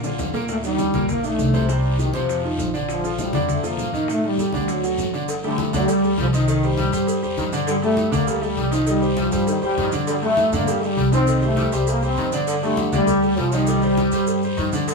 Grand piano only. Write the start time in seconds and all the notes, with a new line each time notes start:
0.04 D3 D4 F4
0.34 A#2 A#3 A#4
0.64 D#3 D4 D#4
0.94 A#2 A#3 A#4
1.24 D#3 D4 D#4
1.54 C3 C4 C5
1.69 C3 C4 C5
1.99 D#3 D#4 G4
2.14 C3 C4 C5
2.43 D#3 D#4 F4
2.74 D3 D4 D5
3.04 F3 F4 A4
3.34 D3 D4 D5
3.63 F3 F4 A4
3.93 D#3 D#4 D#5
4.08 D#3 D#4 D#5
4.39 G3 G4 A4
4.54 D3 D4 D5
4.84 F#3 F#4 A4
5.13 D3 D4 D5
5.44 G3 G4 A4
5.73 D3 D4 D5
5.88 G3 G4 A4
6.04 G3 G4 A4
6.34 D#3 D#4 D#5
6.48 D#3 D#4 D#5
6.63 G3 G4 C5
6.93 G3 G4 C5
7.22 G3 G4 C5
7.53 D3 D4 D5
7.82 G3 G4 A4
8.12 D3 D4 D5
8.27 G3 G4 A4
8.42 G3 G4 A4
8.71 D#3 D#4 D#5
8.87 D#3 D#4 D#5
9.01 G3 G4 C5
9.32 G3 G4 C5
9.62 G3 G4 C5
9.92 D3 D4 D5
10.23 G3 G4 A4
10.53 D3 D4 D5
10.68 G3 G4 A4
10.83 G3 G4 A4
11.12 D#3 D#4 D#5
11.27 D#3 D#4 D#5
11.42 G3 G4 C5
11.73 G3 G4 C5
12.02 G3 G4 C5
12.33 D3 D4 D5
12.63 G3 G4 A4
12.92 D3 D4 D5
13.08 G3 G4 A4
13.23 G3 G4 A4
13.53 D#3 D#4 D#5
13.68 D#3 D#4 D#5
13.83 G3 G4 C5
14.13 G3 G4 C5
14.44 G3 G4 C5
14.73 D3 D4 D5